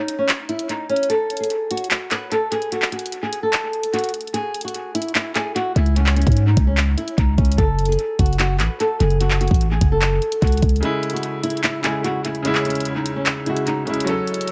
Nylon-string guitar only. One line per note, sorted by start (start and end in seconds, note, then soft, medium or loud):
0.00 0.16 D#4 medium
0.19 0.27 C#4 medium
0.49 0.66 E4 medium
0.69 0.87 D#4 medium
0.89 1.07 C#4 medium
1.10 1.38 A4 loud
1.40 1.69 G#4 medium
1.71 1.88 F#4 medium
1.91 2.08 F#4 medium
2.11 2.29 B4 medium
2.32 2.49 A4 medium
2.52 2.69 G#4 medium
2.72 2.89 F#4 medium
2.92 3.21 F#4 medium
3.23 3.40 G#4 medium
3.43 3.91 A4 medium
3.93 4.11 F#4 medium
4.34 4.62 G#4 loud
4.65 4.93 F#4 medium
4.95 5.12 E4 medium
5.15 5.32 E4 medium
5.35 5.53 G#4 medium
5.55 5.73 F#4 medium
5.76 5.93 E4 medium
5.96 6.14 C#4 medium
6.16 6.45 C#4 medium
6.47 6.64 D#4 medium
6.67 6.76 C#4 medium
6.98 7.15 E4 medium
7.18 7.35 D#4 medium
7.38 7.55 C#4 medium
7.58 7.87 A4 loud
7.89 8.17 G#4 medium
8.19 8.37 F#4 medium
8.39 8.57 F#4 medium
8.60 8.77 B4 medium
8.80 8.97 A4 medium
9.00 9.18 G#4 medium
9.21 9.38 F#4 medium
9.41 9.69 F#4 medium
9.72 9.89 G#4 medium
9.92 10.39 A4 medium
10.42 10.60 F#4 medium
10.82 11.11 G#4 medium
11.13 11.42 F#4 medium
11.43 11.61 E4 medium
11.64 11.81 E4 medium
11.84 12.01 G#4 medium
12.04 12.22 F#4 medium
12.25 12.42 E4 medium
12.45 12.62 C#4 medium
12.65 12.94 C#4 medium
12.96 13.13 D#4 medium
13.16 13.25 C#4 medium
13.46 13.64 E4 medium
13.67 13.84 D#4 medium
13.87 14.04 C#4 medium